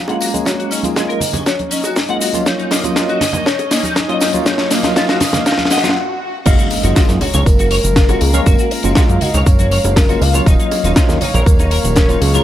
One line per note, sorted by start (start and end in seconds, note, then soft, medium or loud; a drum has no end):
0.00 5.92 F#3 medium
0.00 2.42 A#3 medium
0.00 2.42 G#4 medium
0.00 0.48 F5 loud
0.08 0.30 G#3 medium
0.08 0.30 A#3 medium
0.08 0.30 C#4 medium
0.08 0.30 F4 loud
0.08 0.15 F#5 medium
0.08 closed hi-hat soft
0.08 high bongo medium
0.21 0.27 F#4 medium
0.21 open hi-hat loud
0.21 tambourine medium
0.21 shaker medium
0.34 0.81 G#3 medium
0.34 0.81 A#3 medium
0.34 0.81 C#4 medium
0.34 closed hi-hat medium
0.34 tambourine soft
0.34 high conga medium
0.34 shaker medium
0.45 0.52 F#4 medium
0.45 0.73 C#5 loud
0.45 kick loud
0.45 snare medium
0.45 closed hi-hat medium
0.45 tambourine soft
0.45 high bongo medium
0.45 shaker medium
0.58 0.68 F#4 medium
0.58 closed hi-hat soft
0.71 0.81 C#4 loud
0.71 0.96 D#5 medium
0.71 open hi-hat loud
0.71 tambourine medium
0.71 shaker medium
0.83 0.95 G#3 medium
0.83 0.95 A#3 medium
0.83 0.95 C#4 medium
0.83 0.95 F4 medium
0.83 closed hi-hat medium
0.83 tambourine soft
0.83 high conga medium
0.83 shaker medium
0.96 1.19 G#3 medium
0.96 1.19 A#3 medium
0.96 1.19 C#4 medium
0.96 1.19 F4 loud
0.96 1.02 G#4 loud
0.96 1.48 D#5 loud
0.96 kick loud
0.96 snare medium
0.96 closed hi-hat medium
0.96 tambourine soft
0.96 high bongo medium
0.96 shaker soft
1.08 1.18 A#4 loud
1.08 closed hi-hat soft
1.20 open hi-hat loud
1.20 tambourine medium
1.20 low conga medium
1.20 shaker medium
1.33 1.43 C#4 medium
1.33 closed hi-hat medium
1.33 tambourine soft
1.33 high bongo medium
1.33 high conga medium
1.33 low conga medium
1.33 shaker soft
1.46 1.52 F#4 medium
1.46 1.73 C#5 loud
1.46 kick loud
1.46 snare medium
1.46 closed hi-hat medium
1.46 tambourine soft
1.46 shaker soft
1.59 closed hi-hat soft
1.59 high conga medium
1.71 1.81 C#4 medium
1.71 1.95 D#5 loud
1.71 open hi-hat loud
1.71 tambourine medium
1.71 shaker medium
1.84 1.93 F#4 loud
1.84 closed hi-hat medium
1.84 tambourine soft
1.84 high bongo medium
1.84 shaker medium
1.96 2.48 D#5 loud
1.96 kick loud
1.96 snare medium
1.96 open hi-hat medium
1.96 tambourine soft
1.96 shaker soft
2.09 2.30 G#3 loud
2.09 2.30 A#3 medium
2.09 2.30 C#4 medium
2.09 2.31 F4 loud
2.09 2.15 F#5 medium
2.09 closed hi-hat soft
2.21 2.28 F#4 medium
2.21 open hi-hat loud
2.21 tambourine medium
2.21 high bongo soft
2.21 shaker medium
2.33 2.81 F#3 medium
2.33 2.81 A#3 medium
2.33 2.81 C#4 medium
2.33 2.81 F4 loud
2.33 closed hi-hat medium
2.33 tambourine soft
2.33 high conga medium
2.33 shaker medium
2.46 5.93 C#4 medium
2.46 2.52 D#4 medium
2.46 2.71 C#5 loud
2.46 4.45 D#5 medium
2.46 kick loud
2.46 snare medium
2.46 closed hi-hat medium
2.46 tambourine soft
2.46 shaker medium
2.59 2.68 D#4 medium
2.59 closed hi-hat soft
2.71 2.81 A#3 loud
2.71 2.95 D#5 loud
2.71 snare medium
2.71 open hi-hat loud
2.71 tambourine medium
2.71 high bongo medium
2.71 shaker medium
2.83 2.94 F#3 medium
2.83 2.94 A#3 medium
2.83 2.95 C#4 medium
2.83 2.95 F4 medium
2.83 closed hi-hat medium
2.83 tambourine medium
2.83 high conga medium
2.83 shaker soft
2.96 3.19 F#3 medium
2.96 3.19 A#3 medium
2.96 3.19 C#4 medium
2.96 3.03 F4 loud
2.96 3.19 F4 loud
2.96 3.43 D#5 loud
2.96 kick loud
2.96 snare medium
2.96 closed hi-hat medium
2.96 tambourine soft
2.96 shaker medium
3.08 3.18 F#4 loud
3.08 closed hi-hat soft
3.08 high bongo medium
3.21 snare medium
3.21 open hi-hat loud
3.21 tambourine medium
3.21 low conga medium
3.21 shaker medium
3.33 3.43 A#3 medium
3.33 closed hi-hat medium
3.33 tambourine soft
3.33 high conga medium
3.33 low conga loud
3.33 shaker medium
3.46 3.53 D#4 medium
3.46 3.73 C#5 loud
3.46 kick loud
3.46 snare medium
3.46 closed hi-hat medium
3.46 tambourine soft
3.46 shaker medium
3.59 closed hi-hat soft
3.59 high bongo medium
3.71 3.81 A#3 loud
3.71 3.96 D#5 loud
3.71 snare medium
3.71 open hi-hat loud
3.71 tambourine medium
3.71 shaker medium
3.83 3.93 D#4 loud
3.83 closed hi-hat medium
3.83 tambourine medium
3.83 high conga medium
3.83 shaker medium
3.95 4.40 D#5 loud
3.95 kick loud
3.95 snare medium
3.95 closed hi-hat medium
3.95 tambourine soft
3.95 high bongo medium
3.95 shaker medium
4.08 4.30 F#3 loud
4.08 4.30 A#3 medium
4.08 4.30 C#4 medium
4.08 4.30 F4 loud
4.08 4.15 D#5 medium
4.08 closed hi-hat soft
4.20 4.28 D#4 medium
4.20 snare medium
4.20 open hi-hat loud
4.20 tambourine medium
4.20 shaker medium
4.33 4.80 F#3 loud
4.33 4.80 A#3 medium
4.33 4.81 C#4 medium
4.33 4.81 F4 loud
4.33 closed hi-hat medium
4.33 tambourine soft
4.33 high conga medium
4.33 shaker medium
4.40 4.48 D#5 medium
4.46 4.53 D#4 medium
4.46 4.74 C#5 loud
4.46 5.95 F5 medium
4.46 kick loud
4.46 snare medium
4.46 closed hi-hat medium
4.46 tambourine soft
4.46 high bongo medium
4.46 shaker soft
4.58 4.68 D#4 medium
4.58 snare medium
4.58 closed hi-hat soft
4.71 4.81 A#3 loud
4.71 4.96 D#5 loud
4.71 snare medium
4.71 open hi-hat loud
4.71 tambourine medium
4.71 shaker medium
4.83 4.94 F#3 medium
4.83 4.94 A#3 medium
4.83 4.94 C#4 medium
4.83 4.95 F4 loud
4.83 snare medium
4.83 closed hi-hat medium
4.83 tambourine soft
4.83 high bongo medium
4.83 high conga medium
4.83 shaker medium
4.96 5.19 F#3 medium
4.96 5.19 A#3 medium
4.96 5.19 C#4 medium
4.96 5.03 F4 loud
4.96 5.19 F4 loud
4.96 5.43 D#5 loud
4.96 kick loud
4.96 snare loud
4.96 closed hi-hat medium
4.96 tambourine soft
4.96 shaker medium
5.09 5.18 F#4 loud
5.09 snare medium
5.09 closed hi-hat soft
5.20 snare loud
5.20 open hi-hat loud
5.20 tambourine medium
5.20 low conga medium
5.20 shaker medium
5.33 5.43 A#3 medium
5.33 snare medium
5.33 closed hi-hat medium
5.33 tambourine medium
5.33 high bongo medium
5.33 high conga medium
5.33 low conga loud
5.33 shaker medium
5.46 5.53 D#4 medium
5.46 5.73 F5 loud
5.46 kick loud
5.46 snare medium
5.46 closed hi-hat medium
5.46 tambourine soft
5.46 swell medium
5.46 shaker soft
5.52 snare medium
5.58 snare medium
5.58 closed hi-hat soft
5.58 high conga medium
5.65 snare medium
5.70 5.78 D#5 loud
5.70 5.96 F#5 loud
5.70 snare loud
5.70 open hi-hat loud
5.70 tambourine medium
5.70 high bongo medium
5.70 shaker medium
5.77 snare medium
5.83 5.96 F#3 medium
5.83 5.96 A#3 medium
5.83 5.96 C#4 medium
5.83 5.90 F4 loud
5.83 5.97 F4 medium
5.83 snare medium
5.83 closed hi-hat medium
5.83 tambourine medium
5.83 shaker medium
5.89 snare loud
6.45 6.56 F#1 loud
6.45 6.79 G#3 loud
6.45 10.42 G#3 medium
6.45 6.79 A#3 medium
6.45 6.79 C#4 medium
6.45 6.53 F#4 medium
6.45 10.42 A#4 medium
6.45 7.22 D#5 loud
6.45 12.44 F5 medium
6.45 6.79 F5 loud
6.45 kick loud
6.45 closed hi-hat medium
6.45 crash loud
6.45 tambourine medium
6.45 impact medium
6.45 shaker medium
6.59 6.65 F#4 medium
6.59 closed hi-hat soft
6.59 shaker soft
6.70 open hi-hat loud
6.70 tambourine medium
6.70 high bongo medium
6.83 6.93 F#1 medium
6.83 6.94 G#3 medium
6.83 6.94 A#3 medium
6.83 6.94 C#4 medium
6.83 6.95 F4 medium
6.83 6.90 F#4 medium
6.83 closed hi-hat medium
6.83 tambourine soft
6.83 high conga medium
6.83 shaker medium
6.95 7.18 G#3 medium
6.95 7.18 A#3 medium
6.95 7.19 C#4 medium
6.95 7.19 F4 loud
6.95 7.00 F#4 loud
6.95 kick loud
6.95 snare loud
6.95 closed hi-hat medium
6.95 tambourine soft
6.95 shaker medium
7.08 7.18 F#2 medium
7.08 snare soft
7.08 closed hi-hat soft
7.08 shaker medium
7.21 7.31 C#2 soft
7.21 7.28 F#4 medium
7.21 7.47 C#5 loud
7.21 open hi-hat loud
7.21 tambourine medium
7.21 high bongo medium
7.21 low conga medium
7.34 7.44 C#2 loud
7.34 7.40 C#5 loud
7.34 closed hi-hat medium
7.34 tambourine soft
7.34 high conga medium
7.34 low conga medium
7.34 shaker medium
7.46 7.79 F#1 medium
7.46 8.22 A#4 loud
7.46 kick loud
7.46 closed hi-hat medium
7.46 tambourine medium
7.46 shaker medium
7.59 7.65 F#4 medium
7.59 closed hi-hat soft
7.59 tambourine soft
7.59 high bongo medium
7.59 shaker medium
7.71 7.75 C#5 loud
7.71 open hi-hat loud
7.71 tambourine medium
7.84 8.17 F#1 medium
7.84 closed hi-hat medium
7.84 tambourine soft
7.84 high conga medium
7.84 shaker medium
7.96 8.03 F4 medium
7.96 kick loud
7.96 snare loud
7.96 closed hi-hat medium
7.96 tambourine soft
7.96 shaker medium
8.08 8.30 G#3 loud
8.08 8.30 A#3 medium
8.08 8.30 C#4 medium
8.08 8.30 F4 loud
8.08 8.18 F#4 medium
8.08 closed hi-hat soft
8.08 tambourine soft
8.08 high bongo medium
8.08 shaker soft
8.21 8.41 C#2 medium
8.21 8.48 G#4 loud
8.21 open hi-hat loud
8.21 tambourine loud
8.33 8.81 G#3 loud
8.33 8.81 A#3 medium
8.33 8.81 C#4 medium
8.33 8.40 C#5 loud
8.33 8.81 F5 loud
8.33 closed hi-hat medium
8.33 tambourine soft
8.33 high conga medium
8.33 shaker medium
8.46 8.56 F#1 loud
8.46 8.53 F#4 medium
8.46 8.73 A#4 loud
8.46 kick loud
8.46 closed hi-hat medium
8.46 tambourine medium
8.46 high bongo medium
8.46 shaker medium
8.58 8.65 F#4 medium
8.58 closed hi-hat soft
8.58 tambourine soft
8.58 shaker medium
8.71 9.23 F5 loud
8.71 open hi-hat loud
8.71 tambourine medium
8.83 8.94 F#1 medium
8.83 8.94 G#3 medium
8.83 8.95 A#3 medium
8.83 8.95 C#4 medium
8.83 8.95 F4 medium
8.83 8.90 F#4 medium
8.83 closed hi-hat medium
8.83 tambourine soft
8.83 high conga medium
8.83 shaker medium
8.95 9.19 G#3 medium
8.95 9.19 A#3 medium
8.95 9.19 C#4 medium
8.95 9.19 F4 loud
8.95 9.00 F#4 loud
8.95 kick loud
8.95 snare loud
8.95 closed hi-hat medium
8.95 tambourine soft
8.95 high bongo medium
8.95 shaker medium
9.09 9.19 F#2 medium
9.09 closed hi-hat soft
9.09 shaker soft
9.21 9.32 C#2 soft
9.21 9.28 F#4 medium
9.21 9.46 D#5 loud
9.21 open hi-hat loud
9.21 tambourine medium
9.21 low conga medium
9.34 9.44 C#2 loud
9.34 9.40 C#5 loud
9.34 closed hi-hat medium
9.34 tambourine soft
9.34 high bongo medium
9.34 low conga loud
9.34 shaker medium
9.46 9.79 F#1 medium
9.46 9.98 C#5 loud
9.46 kick loud
9.46 closed hi-hat medium
9.46 tambourine soft
9.46 shaker medium
9.59 9.65 F#4 medium
9.59 closed hi-hat soft
9.59 tambourine soft
9.59 high conga medium
9.59 shaker medium
9.71 9.75 C#5 loud
9.71 open hi-hat loud
9.71 tambourine medium
9.84 10.17 F#1 medium
9.84 closed hi-hat medium
9.84 tambourine soft
9.84 high bongo medium
9.84 shaker medium
9.96 10.03 F4 medium
9.96 10.23 A#4 loud
9.96 kick loud
9.96 snare loud
9.96 open hi-hat medium
9.96 tambourine medium
9.96 shaker medium
10.09 10.30 G#3 loud
10.09 10.30 A#3 medium
10.09 10.30 C#4 medium
10.09 10.31 F4 loud
10.09 10.18 F#4 medium
10.09 closed hi-hat soft
10.09 tambourine soft
10.09 shaker soft
10.21 10.41 C#2 medium
10.21 10.48 F5 loud
10.21 open hi-hat loud
10.21 tambourine medium
10.21 high bongo soft
10.33 10.81 F#3 loud
10.33 10.81 A#3 medium
10.33 10.81 C#4 medium
10.33 10.82 F4 loud
10.33 10.40 C#5 loud
10.33 closed hi-hat medium
10.33 tambourine soft
10.33 high conga medium
10.33 shaker medium
10.46 10.56 D#1 loud
10.46 12.44 F#3 medium
10.46 10.53 D#4 medium
10.46 12.44 C#5 medium
10.46 11.21 D#5 loud
10.46 kick loud
10.46 closed hi-hat medium
10.46 tambourine medium
10.46 shaker medium
10.59 10.65 D#4 medium
10.59 closed hi-hat soft
10.59 shaker soft
10.71 open hi-hat loud
10.71 tambourine loud
10.71 high bongo medium
10.84 10.93 D#1 medium
10.84 10.95 F#3 medium
10.84 10.95 A#3 medium
10.84 10.95 C#4 medium
10.84 10.90 D#4 medium
10.84 10.95 F4 medium
10.84 closed hi-hat medium
10.84 tambourine soft
10.84 high conga medium
10.84 shaker medium
10.96 11.19 F#3 medium
10.96 11.19 A#3 medium
10.96 11.19 C#4 medium
10.96 11.00 D#4 loud
10.96 11.20 F4 loud
10.96 kick loud
10.96 snare loud
10.96 closed hi-hat medium
10.96 tambourine medium
10.96 shaker medium
11.09 11.18 D#2 medium
11.09 snare soft
11.09 closed hi-hat soft
11.09 high bongo medium
11.09 shaker medium
11.21 11.31 A#1 soft
11.21 11.28 D#4 medium
11.21 11.48 C#5 medium
11.21 open hi-hat loud
11.21 tambourine medium
11.21 low conga medium
11.34 11.44 A#1 loud
11.34 11.40 A#4 loud
11.34 closed hi-hat medium
11.34 tambourine soft
11.34 high conga medium
11.34 low conga loud
11.34 shaker medium
11.46 11.79 D#1 medium
11.46 12.23 A#4 loud
11.46 kick loud
11.46 closed hi-hat medium
11.46 tambourine medium
11.46 shaker medium
11.59 11.65 D#4 medium
11.59 closed hi-hat soft
11.59 tambourine soft
11.59 high bongo medium
11.59 shaker soft
11.71 11.75 A#4 loud
11.71 open hi-hat loud
11.71 tambourine loud
11.84 12.17 D#1 medium
11.84 closed hi-hat medium
11.84 tambourine soft
11.84 high conga medium
11.84 shaker medium
11.96 12.03 C#4 medium
11.96 kick loud
11.96 snare loud
11.96 closed hi-hat medium
11.96 tambourine medium
11.96 high bongo medium
11.96 shaker medium
12.09 12.30 F#3 loud
12.09 12.30 A#3 medium
12.09 12.30 C#4 medium
12.09 12.19 D#4 medium
12.09 12.31 F4 loud
12.09 closed hi-hat soft
12.09 tambourine soft
12.09 shaker soft
12.21 12.41 C#2 medium
12.21 12.44 G#4 loud
12.21 open hi-hat loud
12.21 tambourine medium
12.33 12.44 F#3 loud
12.33 12.44 A#3 medium
12.33 12.44 C#4 medium
12.33 12.44 F4 loud
12.33 12.40 A#4 loud
12.33 closed hi-hat medium
12.33 tambourine soft
12.33 high conga medium
12.33 shaker medium